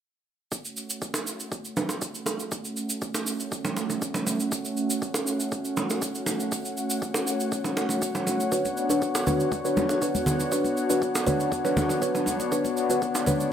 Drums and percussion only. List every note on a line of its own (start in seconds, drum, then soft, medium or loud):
0.52 kick loud
0.52 cabasa medium
0.65 cabasa soft
0.77 cabasa soft
0.90 cabasa medium
1.02 kick loud
1.02 cabasa soft
1.14 high bongo medium
1.14 cabasa medium
1.27 cabasa medium
1.40 cabasa soft
1.52 kick loud
1.52 cabasa soft
1.65 cabasa soft
1.77 low bongo medium
1.77 cabasa soft
1.89 high bongo medium
1.89 cabasa soft
2.02 kick loud
2.02 cabasa medium
2.15 cabasa soft
2.26 high bongo medium
2.26 low bongo soft
2.26 cabasa medium
2.40 cabasa soft
2.52 kick loud
2.52 cabasa medium
2.65 cabasa soft
2.77 cabasa soft
2.90 cabasa medium
3.02 kick loud
3.02 cabasa soft
3.14 high bongo medium
3.14 cabasa medium
3.27 cabasa medium
3.40 cabasa soft
3.52 kick loud
3.52 cabasa soft
3.65 low bongo medium
3.65 cabasa soft
3.77 high bongo medium
3.77 cabasa soft
3.90 low bongo soft
3.90 cabasa soft
4.02 kick loud
4.02 cabasa medium
4.14 low bongo medium
4.14 cabasa medium
4.27 low bongo soft
4.27 cabasa medium
4.40 cabasa soft
4.52 kick loud
4.52 cabasa medium
4.65 cabasa soft
4.77 cabasa soft
4.90 cabasa medium
5.02 kick loud
5.02 cabasa soft
5.14 high bongo medium
5.14 cabasa medium
5.27 cabasa medium
5.40 cabasa soft
5.52 kick loud
5.52 cabasa soft
5.65 cabasa soft
5.77 low bongo medium
5.77 cabasa soft
5.90 high bongo medium
5.90 cabasa medium
6.02 kick loud
6.02 cabasa medium
6.15 cabasa medium
6.26 high bongo medium
6.26 low bongo medium
6.26 cabasa medium
6.40 cabasa soft
6.52 kick loud
6.52 cabasa medium
6.65 cabasa soft
6.77 cabasa soft
6.90 cabasa medium
7.02 kick loud
7.02 cabasa soft
7.14 high bongo medium
7.14 cabasa medium
7.27 cabasa medium
7.40 cabasa medium
7.52 kick loud
7.52 cabasa soft
7.64 low bongo medium
7.64 cabasa soft
7.77 high bongo medium
7.77 cabasa soft
7.89 low bongo medium
7.89 cabasa soft
8.02 kick loud
8.02 cabasa medium
8.15 low bongo medium
8.15 cabasa soft
8.27 low bongo medium
8.27 cabasa medium
8.40 cabasa soft
8.52 kick loud
8.52 cabasa medium
8.65 muted conga medium
8.65 cabasa soft
8.77 cabasa soft
8.89 muted conga soft
8.89 cabasa medium
9.02 kick loud
9.02 cabasa soft
9.15 high bongo loud
9.15 cabasa medium
9.27 muted conga soft
9.27 high conga medium
9.27 low conga loud
9.27 cabasa medium
9.40 cabasa soft
9.52 kick loud
9.52 muted conga soft
9.52 high conga medium
9.52 cabasa medium
9.65 cabasa soft
9.77 low bongo medium
9.77 muted conga soft
9.77 high conga medium
9.77 cabasa soft
9.89 high bongo medium
9.89 cabasa soft
10.02 kick loud
10.02 cabasa medium
10.15 muted conga soft
10.15 high conga loud
10.15 cabasa medium
10.26 high bongo medium
10.26 low bongo medium
10.26 low conga medium
10.26 cabasa medium
10.40 muted conga soft
10.40 cabasa soft
10.52 kick loud
10.52 cabasa medium
10.64 muted conga medium
10.64 cabasa soft
10.77 cabasa soft
10.90 muted conga soft
10.90 cabasa medium
11.02 kick loud
11.02 cabasa soft
11.15 high bongo medium
11.15 cabasa medium
11.26 muted conga medium
11.26 high conga medium
11.26 low conga loud
11.26 cabasa medium
11.40 cabasa soft
11.52 kick loud
11.52 muted conga soft
11.52 high conga medium
11.52 cabasa soft
11.65 low bongo medium
11.65 cabasa soft
11.77 high bongo medium
11.77 muted conga soft
11.77 high conga medium
11.77 low conga medium
11.77 cabasa soft
11.89 low bongo soft
11.89 cabasa soft
12.02 kick loud
12.02 cabasa medium
12.15 low bongo medium
12.15 muted conga soft
12.15 cabasa soft
12.26 low bongo medium
12.26 high conga medium
12.26 cabasa medium
12.40 muted conga soft
12.40 cabasa soft
12.52 kick loud
12.52 cabasa medium
12.64 muted conga medium
12.64 cabasa soft
12.77 cabasa soft
12.90 muted conga soft
12.90 cabasa medium
13.02 kick loud
13.02 cabasa soft
13.15 high bongo medium
13.15 cabasa medium
13.26 muted conga medium
13.26 high conga medium
13.26 low conga loud
13.26 cabasa medium
13.40 cabasa soft